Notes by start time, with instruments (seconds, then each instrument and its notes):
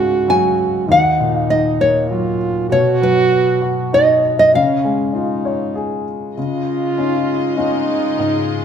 Already playing: upright piano C#2 G#2 C#3 G#3, french horn F#4
0.28 upright piano F#3, nylon-string guitar G#5
0.88 upright piano D#2, french horn D#4
0.92 nylon-string guitar F#5
1.20 upright piano A#2
1.36 nylon-string guitar F5
1.50 upright piano D#3, nylon-string guitar D#5
1.80 upright piano A#3, nylon-string guitar C#5
2.09 upright piano F#3, french horn F4
2.70 upright piano B2, french horn F#4, nylon-string guitar C#5
3.02 upright piano F#3, nylon-string guitar B4
3.32 upright piano B3
3.62 upright piano F#4
3.93 upright piano D#4, nylon-string guitar D#5
4.39 nylon-string guitar D#5
4.53 upright piano C#3, french horn C#4, nylon-string guitar F5
4.84 upright piano G#3
5.14 french horn D#4, upright piano F4
5.45 upright piano C#5
5.75 upright piano G#4
6.35 string section C#3 G#3 F4 D#5, upright piano C#3, french horn F4
6.98 upright piano C#4 D#4 F4
7.57 upright piano C#4 D#4 F4, french horn D#4
8.19 upright piano G#2